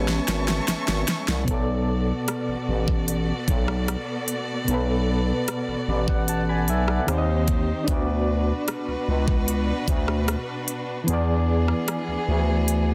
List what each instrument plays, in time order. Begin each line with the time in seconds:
Already playing: fm bass A1, synth keys G#3 B3 C#4 B4, string section E5 G#5 A5 C#6
0.08 snare
0.28 fm bass G#1, snare, closed hi-hat
0.48 snare
0.68 fm bass G#1, snare, closed hi-hat
0.88 fm bass G#1, snare
1.08 snare, closed hi-hat
1.28 fm bass C2, snare
1.44 fm bass B1, synth keys B2 B3, string section B3 A4, kick, closed hi-hat
1.48 string section F#4 D5, synth keys A4
1.54 synth keys D5
2.28 cross-stick, closed hi-hat
2.48 fm bass A1
2.69 fm bass A1
2.88 kick
3.08 closed hi-hat
3.48 fm bass B1, kick, closed hi-hat
3.68 cross-stick
3.88 cross-stick, closed hi-hat
4.28 closed hi-hat
4.64 fm bass B1, synth keys B2 B3, closed hi-hat
4.71 synth keys A4 B4
5.48 cross-stick, closed hi-hat
5.68 fm bass A1
5.88 fm bass A1, synth keys B4 D5
6.08 synth keys D5 F#5, kick
6.28 synth keys F#5 A5, closed hi-hat
6.49 synth keys G#5 B5
6.68 fm bass B1, synth keys E5 G#5, closed hi-hat
6.88 synth keys D5 F#5, cross-stick
7.06 fm bass D#2, synth keys D#3 C4 G4, string section D#3 D#4 G4 C5, cross-stick, closed hi-hat
7.11 synth keys D5
7.18 synth keys D#5
7.48 kick, closed hi-hat
7.84 string section B2, synth keys B3 D4, kick, closed hi-hat
7.88 fm bass D2, string section D4 F#4 B4, synth keys F#4
7.94 synth keys D5
8.68 cross-stick, closed hi-hat
8.88 fm bass C#2
9.08 fm bass C#2
9.28 kick
9.48 closed hi-hat
9.88 fm bass D2, kick, closed hi-hat
10.08 cross-stick
10.28 cross-stick, closed hi-hat
10.68 closed hi-hat
11.04 synth keys E3 B3, string section E3 B3
11.08 fm bass E2, string section G#4, synth keys G#4, closed hi-hat
11.13 synth keys D5
11.68 cross-stick
11.88 cross-stick, closed hi-hat
12.08 fm bass D2
12.28 fm bass D2
12.68 closed hi-hat